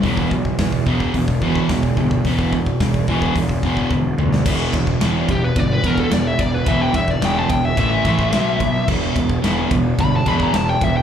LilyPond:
<<
  \new Staff \with { instrumentName = "Lead electric guitar" } { \time 4/4 \key e \minor \tempo 4 = 109 r1 | r1 | r4. g'16 b'16 d''16 b'16 ais'16 a'16 d''16 e''16 d''16 b'16 | e''16 g''16 e''16 d''16 g''16 a''16 g''16 e''16 e''2 |
r2 b''16 a''16 b''16 ais''16 a''16 g''16 e''16 g''16 | }
  \new Staff \with { instrumentName = "Distorted electric guitar" } { \clef bass \time 4/4 \key e \minor <e, b, e>8 <e, b,>8 <e, b,>8 <e, b, e>8 <e, b,>8 <e, b, e>8 <e, b,>8 <e, b,>8 | <e, b, e>8 <e, b,>8 <e, b,>8 <e, b, e>8 <e, b,>8 <e, b, e>8 <e, b,>8 <e, b,>8 | <e, b, e>8 <e, b,>8 <e, b, e>8 <e, b,>8 <e, b,>8 <e, b, e>8 <e, b,>8 <e, b,>8 | <e, b, e>8 <e, b,>8 <e, b, e>8 <e, b,>8 <a, e a>8 <a, e a>8 <b, fis b>8 <b, fis>8 |
<e, b, e>8 <e, b,>8 <e, b, e>8 <e, b,>8 <e, b,>8 <e, b, e>8 <e, b,>8 <e, b,>8 | }
  \new Staff \with { instrumentName = "Picked electric bass" } { \clef bass \time 4/4 \key e \minor e,,8 b,,8 e,8 e,,8 e,,4 e,,8 g,,8 | e,,4 e,,8 e,,8 e,,8 e,,8 e,,8 d,8 | e,,8 e,,8 e,,8 e,,8 g,,8 e,,8 e,,8 e,,8 | e,,8 e,,8 e,,8 e,,8 a,,8 a,,8 b,,8 b,,8 |
e,,8 e,,8 e,,8 e,,8 g,,8 e,,8 e,,8 e,,8 | }
  \new DrumStaff \with { instrumentName = "Drums" } \drummode { \time 4/4 <hho bd>16 bd16 bd16 bd16 <hho bd sn>16 bd16 bd16 bd16 <hho bd>16 bd16 bd16 bd16 <hho bd sn>16 bd16 bd16 bd16 | <hho bd>16 bd16 bd16 bd16 <hho bd sn>16 bd16 bd16 bd16 <hho bd>16 bd16 bd16 bd16 <bd tommh>8 toml16 sn16 | <cymc bd>8 <bd cymr>16 bd16 <cymr sn>8 <bd cymr>8 <bd cymr>8 <bd cymr>16 bd16 <cymr sn>8 <bd cymr>8 | <bd cymr>8 <bd cymr>16 bd16 <cymr sn>8 <bd cymr>8 <bd cymr>8 <bd cymr>16 bd16 <cymr sn>8 <bd cymr>8 |
<cymc bd>8 <bd cymr>16 bd16 <cymr sn>8 <bd cymr>8 <bd cymr>8 <bd cymr>16 bd16 <cymr sn>8 <bd cymr>8 | }
>>